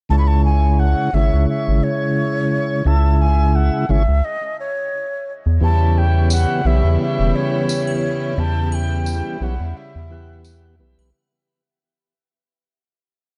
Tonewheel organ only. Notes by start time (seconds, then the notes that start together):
0.09 C#3 G#3 E4 C#5
1.13 C#3 G#3 E4 C#5
2.85 C#3 G#3 E4 E5
3.89 C#3 G#3 E4 C#5
5.61 E3 B3 G4 C#5
6.65 E3 B3 G4 C#5
8.37 E3 B3 G4 G5
9.41 E3 B3 G4 C#5
10.10 E3 B3 G4 F#5
10.79 E3 B3 G4 B4